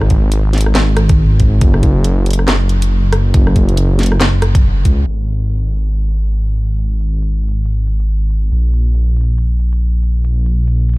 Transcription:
Already playing: G#1
0.01 cross-stick
0.10 kick, closed hi-hat
0.32 closed hi-hat
0.53 snare, closed hi-hat
0.58 closed hi-hat
0.61 closed hi-hat
0.66 cross-stick
0.75 G#1, snare, clap, closed hi-hat
0.97 cross-stick, closed hi-hat
1.09 kick, closed hi-hat
1.40 kick, closed hi-hat
1.61 F#1, kick, closed hi-hat
1.74 cross-stick
1.83 kick, closed hi-hat
2.04 closed hi-hat
2.26 closed hi-hat
2.31 closed hi-hat
2.33 closed hi-hat
2.39 cross-stick
2.48 F#1, snare, clap, closed hi-hat
2.69 closed hi-hat
2.82 closed hi-hat
3.13 cross-stick, closed hi-hat
3.34 F#1, kick, closed hi-hat
3.47 cross-stick
3.56 kick, closed hi-hat
3.69 closed hi-hat
3.77 closed hi-hat
3.99 snare, closed hi-hat
4.03 closed hi-hat
4.06 closed hi-hat
4.12 cross-stick
4.20 F#1, snare, clap, closed hi-hat
4.42 cross-stick, closed hi-hat
4.55 kick, closed hi-hat
4.85 C#2, kick, closed hi-hat
5.07 G#1, closed hi-hat
5.28 closed hi-hat
5.50 closed hi-hat
5.71 closed hi-hat
5.76 closed hi-hat
5.78 closed hi-hat
5.93 closed hi-hat
6.14 closed hi-hat
6.27 closed hi-hat
6.58 closed hi-hat
6.79 closed hi-hat
7.01 closed hi-hat
7.22 closed hi-hat
7.44 closed hi-hat
7.48 closed hi-hat
7.51 closed hi-hat
7.66 closed hi-hat
7.87 closed hi-hat
8.00 closed hi-hat
8.30 closed hi-hat
8.52 A#1, closed hi-hat
8.73 closed hi-hat
8.95 closed hi-hat
9.17 closed hi-hat
9.21 closed hi-hat
9.24 closed hi-hat
9.38 closed hi-hat
9.60 closed hi-hat
9.73 closed hi-hat
10.03 closed hi-hat
10.25 closed hi-hat
10.46 closed hi-hat
10.68 closed hi-hat
10.89 closed hi-hat
10.93 closed hi-hat

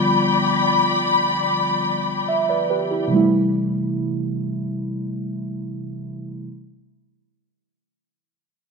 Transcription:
Already playing: D3 F3 G3 B3 F4 D5 G5 B5
2.28 E5
2.49 B4 D5
2.70 G4 B4
2.91 E4 G4
3.07 C3 E3
3.12 G3 A3
3.16 E4

